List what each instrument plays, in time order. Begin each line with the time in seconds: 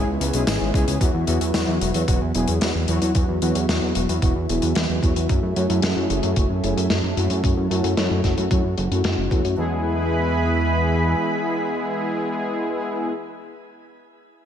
Already playing: analog synth pad G#3 B3 E4
0.07 analog synth bass C#2
0.20 analog synth bass C#2, closed hi-hat
0.33 analog synth bass B1, analog polysynth G#3 C#4 E4 G#4, closed hi-hat
0.47 analog synth bass G#1, analog polysynth G#3 C#4 E4 G#4, snare, closed hi-hat
0.61 analog synth bass G#1
0.74 analog synth bass C#2, analog polysynth G#3 C#4 E4 G#4, kick, closed hi-hat
0.87 analog synth bass C#2, closed hi-hat
1.01 analog synth bass E2, analog polysynth F#3 B3 E4 F#4, analog synth pad F#3 E4, kick, closed hi-hat
1.14 analog synth bass E2
1.27 analog synth bass E2, analog polysynth F#3 B3 E4 F#4, closed hi-hat
1.41 analog synth bass E2, closed hi-hat
1.54 analog synth bass E2, analog polysynth F#3 B3 E4 F#4, snare, closed hi-hat
1.68 analog synth bass E2
1.81 analog synth bass E1, analog polysynth F#3 B3 E4 F#4, closed hi-hat
1.94 analog synth bass E2, analog polysynth F#3 B3 E4 F#4, closed hi-hat
2.08 analog synth bass E1, analog polysynth F#3 B3 E4 F#4, kick, closed hi-hat
2.21 analog synth bass E2
2.35 analog synth bass E1, analog polysynth F#3 B3 E4 G#4, closed hi-hat
2.48 analog synth bass E2, closed hi-hat
2.61 analog synth bass E2, analog polysynth F#3 B3 E4 F#4, snare, closed hi-hat
2.75 analog synth bass E2
2.88 analog synth bass E2, analog polysynth F#3 B3 E4 F#4, closed hi-hat
3.02 analog synth bass E2, analog polysynth F#3 B3 E4 F#4, closed hi-hat
3.15 analog synth bass E2, analog polysynth F#3 B3 E4 F#4, kick, closed hi-hat
3.29 analog synth bass E2
3.42 analog synth bass E2, analog polysynth F#3 B3 E4 F#4, closed hi-hat
3.55 analog synth bass E2, closed hi-hat
3.69 analog synth bass E2, analog polysynth F#3 B3 E4 F#4, snare, closed hi-hat
3.82 analog synth bass E2
3.95 analog synth bass E1, analog polysynth F#3 B3 E4 F#4, closed hi-hat
4.09 analog synth bass E2, analog polysynth F#3 B3 E4 F#4, closed hi-hat
4.22 analog synth bass E1, analog polysynth F#3 B3 E4 F#4, kick, closed hi-hat
4.36 analog synth bass E2
4.49 analog synth bass E1, analog polysynth F#3 B3 E4 G#4, closed hi-hat
4.62 analog synth bass E2, closed hi-hat
4.75 analog synth bass E2, analog polysynth F#3 B3 E4 F#4, snare, closed hi-hat
4.89 analog synth bass E2
5.03 analog synth bass E2, analog polysynth F#3 B3 E4 F#4, kick, closed hi-hat
5.16 analog synth bass E2, analog polysynth F#3 B3 E4 F#4, closed hi-hat
5.29 analog synth bass F#2, analog polysynth A3 C#4 E4 F#4, analog synth pad C#4 G#4 A4, kick, closed hi-hat
5.43 analog synth bass F#2
5.56 analog synth bass F#2, analog polysynth A3 C#4 E4 F#4, closed hi-hat
5.70 analog synth bass F#2, closed hi-hat
5.82 analog synth bass F#2, analog polysynth A3 C#4 E4 F#4, snare, closed hi-hat
5.97 analog synth bass F#2
6.10 analog synth bass F#1, analog polysynth A3 C#4 E4 F#4, closed hi-hat
6.23 analog synth bass F#2, analog polysynth A3 C#4 E4 F#4, closed hi-hat
6.36 analog synth bass F#1, analog polysynth A3 C#4 E4 F#4, kick, closed hi-hat
6.50 analog synth bass F#2
6.63 analog synth bass F#1, analog polysynth A3 C#4 E4 G#4, closed hi-hat
6.77 analog synth bass F#2, closed hi-hat
6.90 analog synth bass F#2, analog polysynth A3 C#4 E4 F#4, snare, closed hi-hat
7.04 analog synth bass F#2
7.17 analog synth bass F#2, analog polysynth A3 C#4 E4 F#4, closed hi-hat
7.30 analog synth bass F#2, analog polysynth A3 C#4 E4 F#4, closed hi-hat
7.44 analog synth bass F#2, analog polysynth A3 C#4 E4 F#4, analog synth pad F#4, kick, closed hi-hat
7.57 analog synth bass F#2
7.71 analog synth bass F#2, analog polysynth A3 C#4 E4 F#4, closed hi-hat
7.84 analog synth bass F#2, closed hi-hat
7.97 analog synth bass F#2, analog polysynth A3 C#4 E4 F#4, snare, closed hi-hat
8.11 analog synth bass F#2
8.24 analog synth bass F#1, analog polysynth A3 C#4 E4 F#4, kick, snare, closed hi-hat
8.37 analog synth bass F#2, analog polysynth A3 C#4 E4 F#4, closed hi-hat
8.51 analog synth bass F#2, analog polysynth A3 C#4 E4 F#4, kick, closed hi-hat
8.64 analog synth bass F#2
8.78 analog synth bass F#1, closed hi-hat
8.91 analog synth bass F#2, analog polysynth A3 C#4 E4 F#4, closed hi-hat
9.04 analog synth bass F#2, analog polysynth A3 C#4 E4 F#4, snare, closed hi-hat
9.18 analog synth bass F#1
9.31 analog synth bass E2, analog polysynth A3 C#4 E4 F#4, kick, closed hi-hat
9.45 analog synth bass F#2, closed hi-hat
9.58 analog synth bass E2, analog synth pad E3 E4 G#4 B4 B5, analog polysynth G#3 B3 E4 G#4